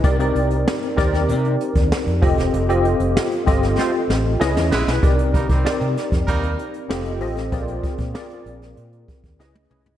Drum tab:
HH |xxxx-xxxxxxx-xox|xxxx-xxx--------|xxxx-xxxxxxx-xox|xxxx-xxxxxxx----|
SD |----o-oo----o--o|----o--oo-o-oooo|----o-oo----o--o|----o--o----o---|
T1 |----------------|----------------|----------------|-------------o--|
T2 |----------------|----------------|----------------|--------------o-|
FT |----------------|----------------|----------------|---------------o|
BD |o-----o----o--o-|------o---------|o-oo---oo-------|o-oo------oo----|